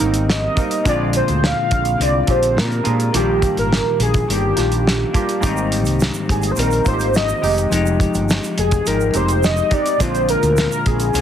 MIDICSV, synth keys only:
0, 0, Header, 1, 2, 480
1, 0, Start_track
1, 0, Tempo, 571429
1, 727, Time_signature, 4, 2, 24, 8
1, 9418, End_track
2, 0, Start_track
2, 0, Title_t, "Synth keys"
2, 0, Program_c, 0, 88
2, 0, Control_c, 0, 64, 127
2, 0, Note_on_c, 0, 58, 71
2, 0, Note_on_c, 0, 59, 50
2, 0, Note_on_c, 0, 60, 73
2, 0, Note_on_c, 0, 63, 66
2, 0, Note_on_c, 0, 67, 85
2, 3, Note_off_c, 0, 63, 0
2, 3, Note_on_c, 0, 63, 61
2, 7, Note_on_c, 0, 70, 76
2, 50, Note_off_c, 0, 60, 0
2, 50, Note_on_c, 0, 60, 67
2, 381, Note_off_c, 0, 58, 0
2, 388, Note_off_c, 0, 63, 0
2, 390, Note_off_c, 0, 70, 0
2, 411, Note_off_c, 0, 60, 0
2, 468, Note_on_c, 0, 58, 68
2, 478, Note_on_c, 0, 60, 60
2, 484, Note_on_c, 0, 63, 61
2, 492, Note_on_c, 0, 70, 75
2, 669, Note_off_c, 0, 58, 0
2, 674, Note_off_c, 0, 60, 0
2, 677, Note_off_c, 0, 63, 0
2, 681, Note_off_c, 0, 70, 0
2, 713, Note_on_c, 0, 60, 71
2, 719, Note_on_c, 0, 62, 72
2, 727, Note_on_c, 0, 65, 72
2, 732, Note_on_c, 0, 68, 76
2, 736, Control_c, 0, 64, 0
2, 737, Note_off_c, 0, 59, 0
2, 740, Note_off_c, 0, 67, 0
2, 870, Control_c, 0, 64, 127
2, 1485, Note_off_c, 0, 60, 0
2, 1488, Note_off_c, 0, 62, 0
2, 1492, Note_off_c, 0, 65, 0
2, 1495, Note_off_c, 0, 68, 0
2, 1907, Note_on_c, 0, 60, 68
2, 1915, Note_on_c, 0, 62, 64
2, 1922, Note_on_c, 0, 65, 65
2, 1928, Note_on_c, 0, 67, 78
2, 2299, Note_off_c, 0, 60, 0
2, 2303, Note_off_c, 0, 62, 0
2, 2307, Note_off_c, 0, 65, 0
2, 2309, Note_off_c, 0, 67, 0
2, 2384, Note_on_c, 0, 60, 61
2, 2391, Note_on_c, 0, 62, 64
2, 2398, Note_on_c, 0, 65, 61
2, 2405, Note_on_c, 0, 68, 67
2, 2586, Note_off_c, 0, 60, 0
2, 2589, Note_off_c, 0, 62, 0
2, 2593, Note_off_c, 0, 65, 0
2, 2596, Note_off_c, 0, 68, 0
2, 2631, Note_on_c, 0, 58, 68
2, 2635, Note_on_c, 0, 62, 66
2, 2642, Note_on_c, 0, 65, 66
2, 2649, Note_on_c, 0, 67, 83
2, 2655, Control_c, 0, 64, 0
2, 2788, Control_c, 0, 64, 127
2, 3403, Note_off_c, 0, 58, 0
2, 3405, Note_off_c, 0, 62, 0
2, 3409, Note_off_c, 0, 65, 0
2, 3412, Note_off_c, 0, 67, 0
2, 3831, Note_on_c, 0, 58, 71
2, 3838, Note_on_c, 0, 62, 67
2, 3846, Note_on_c, 0, 65, 64
2, 3852, Note_on_c, 0, 67, 80
2, 4220, Note_off_c, 0, 58, 0
2, 4224, Note_off_c, 0, 62, 0
2, 4228, Note_off_c, 0, 65, 0
2, 4231, Note_off_c, 0, 67, 0
2, 4312, Note_on_c, 0, 58, 77
2, 4318, Note_on_c, 0, 62, 69
2, 4325, Note_on_c, 0, 65, 70
2, 4334, Note_on_c, 0, 67, 87
2, 4509, Note_off_c, 0, 58, 0
2, 4512, Note_off_c, 0, 62, 0
2, 4516, Note_off_c, 0, 65, 0
2, 4520, Note_off_c, 0, 67, 0
2, 4542, Note_on_c, 0, 58, 80
2, 4550, Note_on_c, 0, 60, 73
2, 4557, Note_on_c, 0, 63, 77
2, 4565, Note_on_c, 0, 67, 89
2, 4573, Control_c, 0, 64, 0
2, 4701, Control_c, 0, 64, 127
2, 5319, Note_off_c, 0, 58, 0
2, 5322, Note_off_c, 0, 60, 0
2, 5326, Note_off_c, 0, 63, 0
2, 5330, Note_off_c, 0, 67, 0
2, 5750, Note_on_c, 0, 58, 75
2, 5757, Note_on_c, 0, 60, 69
2, 5762, Note_on_c, 0, 63, 67
2, 5773, Note_on_c, 0, 65, 59
2, 5822, Note_off_c, 0, 65, 0
2, 5825, Note_on_c, 0, 67, 73
2, 6139, Note_off_c, 0, 58, 0
2, 6143, Note_off_c, 0, 60, 0
2, 6145, Note_off_c, 0, 63, 0
2, 6177, Note_off_c, 0, 67, 0
2, 6229, Note_on_c, 0, 56, 76
2, 6238, Note_on_c, 0, 60, 71
2, 6245, Note_on_c, 0, 63, 75
2, 6249, Note_on_c, 0, 67, 84
2, 6254, Control_c, 0, 64, 0
2, 6417, Control_c, 0, 64, 127
2, 7004, Note_off_c, 0, 56, 0
2, 7009, Note_off_c, 0, 60, 0
2, 7012, Note_off_c, 0, 63, 0
2, 7014, Note_off_c, 0, 67, 0
2, 7673, Note_on_c, 0, 56, 73
2, 7679, Note_on_c, 0, 60, 68
2, 7688, Note_on_c, 0, 63, 67
2, 7693, Note_on_c, 0, 67, 79
2, 8061, Note_off_c, 0, 56, 0
2, 8064, Note_off_c, 0, 60, 0
2, 8069, Note_off_c, 0, 63, 0
2, 8072, Note_off_c, 0, 67, 0
2, 8150, Note_on_c, 0, 56, 70
2, 8158, Note_on_c, 0, 60, 59
2, 8163, Note_on_c, 0, 63, 65
2, 8169, Note_on_c, 0, 67, 68
2, 8349, Note_off_c, 0, 56, 0
2, 8352, Note_off_c, 0, 60, 0
2, 8355, Note_off_c, 0, 63, 0
2, 8358, Note_off_c, 0, 67, 0
2, 8390, Note_on_c, 0, 56, 70
2, 8397, Note_on_c, 0, 60, 67
2, 8404, Note_on_c, 0, 62, 63
2, 8409, Note_on_c, 0, 65, 77
2, 8415, Control_c, 0, 64, 0
2, 8560, Control_c, 0, 64, 127
2, 9164, Note_off_c, 0, 56, 0
2, 9167, Note_off_c, 0, 60, 0
2, 9171, Note_off_c, 0, 62, 0
2, 9173, Note_off_c, 0, 65, 0
2, 9418, End_track
0, 0, End_of_file